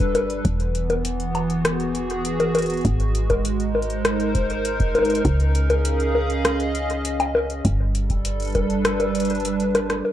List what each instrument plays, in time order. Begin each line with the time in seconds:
Already playing: fm bass G1, analog synth pad G3 D4 A4 B4
0.00 kick, closed hi-hat
0.15 closed hi-hat, high bongo
0.30 closed hi-hat
0.45 fm bass E1, analog synth pad E3, kick, closed hi-hat
0.50 analog synth pad B3
0.60 closed hi-hat
0.75 closed hi-hat
0.90 closed hi-hat, high bongo
1.05 closed hi-hat
1.13 analog synth pad F#4
1.20 closed hi-hat
1.35 closed hi-hat, high bongo
1.50 analog synth pad G#4, closed hi-hat
1.65 cross-stick, closed hi-hat
1.80 closed hi-hat
1.95 closed hi-hat
2.10 closed hi-hat
2.25 closed hi-hat
2.40 closed hi-hat, high bongo
2.55 closed hi-hat, high bongo
2.59 closed hi-hat
2.62 closed hi-hat
2.66 closed hi-hat
2.70 closed hi-hat
2.74 closed hi-hat
2.77 closed hi-hat
2.81 closed hi-hat
2.85 fm bass G#1, analog synth pad G#3, kick, closed hi-hat
3.00 closed hi-hat
3.15 closed hi-hat
3.24 analog synth pad D#4
3.30 kick, closed hi-hat, high bongo
3.45 closed hi-hat
3.60 closed hi-hat
3.66 analog synth pad A#4
3.72 analog synth pad C5, high bongo
3.82 closed hi-hat
3.90 closed hi-hat
4.05 cross-stick, closed hi-hat
4.20 closed hi-hat
4.35 kick, closed hi-hat
4.50 closed hi-hat
4.65 closed hi-hat
4.80 kick, closed hi-hat
4.95 closed hi-hat, high bongo
4.99 high bongo
5.02 closed hi-hat, high bongo
5.06 closed hi-hat, high bongo
5.10 high bongo
5.14 closed hi-hat, high bongo
5.17 high bongo
5.21 fm bass C#2, analog synth pad C#4, kick, closed hi-hat, high bongo
5.40 closed hi-hat
5.45 analog synth pad G#4
5.55 closed hi-hat
5.60 analog synth pad F5
5.70 closed hi-hat, high bongo
5.85 closed hi-hat
6.00 closed hi-hat
6.15 analog synth pad D#5, high bongo
6.30 closed hi-hat
6.45 cross-stick, closed hi-hat
6.60 closed hi-hat
6.75 closed hi-hat
6.90 closed hi-hat
7.05 closed hi-hat
7.20 closed hi-hat, high bongo
7.35 high bongo
7.50 closed hi-hat
7.65 fm bass G1, analog synth pad G3, kick, closed hi-hat
7.84 analog synth pad A4
7.95 closed hi-hat
8.05 analog synth pad D4
8.10 kick, closed hi-hat
8.23 analog synth pad B4, closed hi-hat
8.40 closed hi-hat
8.42 closed hi-hat
8.45 closed hi-hat
8.47 closed hi-hat
8.50 closed hi-hat
8.52 kick, closed hi-hat
8.55 closed hi-hat, high bongo
8.70 closed hi-hat
8.85 cross-stick, closed hi-hat
9.00 closed hi-hat, high bongo
9.15 closed hi-hat
9.20 closed hi-hat
9.25 closed hi-hat
9.30 closed hi-hat
9.35 closed hi-hat
9.40 closed hi-hat
9.45 closed hi-hat
9.60 closed hi-hat
9.75 cross-stick, closed hi-hat, high bongo
9.90 cross-stick, closed hi-hat
10.05 analog synth pad E3, high bongo